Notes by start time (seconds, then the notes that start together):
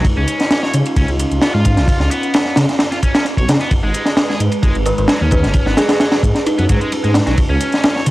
Already playing: D#4
0.04 C#2 C#4 F4, kick, closed hi-hat, ride
0.17 C#2 C#4
0.28 closed hi-hat, ride
0.40 snare, closed hi-hat
0.51 snare, closed hi-hat, ride
0.63 C#5, snare
0.74 C#3, closed hi-hat, ride
0.86 closed hi-hat, ride
0.96 C#2 C#4, kick, closed hi-hat, ride
1.08 C#2, closed hi-hat
1.19 closed hi-hat, ride
1.31 C#2, closed hi-hat
1.41 B3, snare, closed hi-hat, ride
1.54 G#2 F4
1.65 kick, closed hi-hat, ride
1.77 B1, snare, closed hi-hat
1.88 C#2, kick, closed hi-hat, ride
2.00 C#2 F4, snare
2.11 B3, closed hi-hat, ride
2.23 closed hi-hat
2.34 snare, closed hi-hat, ride
2.45 snare
2.56 C#3, snare, closed hi-hat, ride
2.69 snare, closed hi-hat
2.79 snare, closed hi-hat, ride
2.92 F4, snare, closed hi-hat
3.02 C#4, kick, closed hi-hat, ride
3.15 C#4, snare, closed hi-hat, ride
3.25 snare, closed hi-hat
3.37 B1 C#5, kick, closed hi-hat, ride
3.48 C#3, snare, closed hi-hat, ride
3.59 B3, snare, closed hi-hat
3.71 G#1 G#3 B4, kick, closed hi-hat, ride
3.83 G#1 G#3
3.94 closed hi-hat, ride
4.06 snare, closed hi-hat
4.17 snare, closed hi-hat, ride
4.29 G#4, snare
4.40 G#2, closed hi-hat, ride
4.52 closed hi-hat, ride
4.63 G#1 G#3, kick, closed hi-hat, ride
4.75 G#1, closed hi-hat
4.85 B4, closed hi-hat, ride
4.98 G#1 B4, closed hi-hat
5.08 F#3, snare, closed hi-hat, ride
5.21 D#2 C#4
5.31 B4, kick, closed hi-hat, ride
5.43 F#1, snare, closed hi-hat
5.54 G#1 C#4, kick, closed hi-hat, ride
5.66 G#1 B3, snare
5.77 F#3 G#4, snare, closed hi-hat, ride
5.89 G#4, snare, closed hi-hat, ride
6.00 snare, closed hi-hat, ride
6.12 snare, ride
6.23 G#2, kick, closed hi-hat, ride
6.35 snare, closed hi-hat
6.46 D#4, closed hi-hat, ride
6.58 F#2 B3, closed hi-hat, ride
6.69 G#2 F#3, kick, closed hi-hat, ride
6.81 G#3, closed hi-hat
6.92 closed hi-hat, ride
7.04 G#2 G#3, closed hi-hat
7.14 snare, closed hi-hat, ride
7.26 B1 F#3, snare, closed hi-hat
7.38 C#2 D#4 F4, kick, closed hi-hat, ride
7.50 C#2 C#4
7.61 closed hi-hat, ride
7.72 snare, closed hi-hat
7.84 snare, closed hi-hat, ride
7.95 C#5, snare
8.06 C#3, closed hi-hat, ride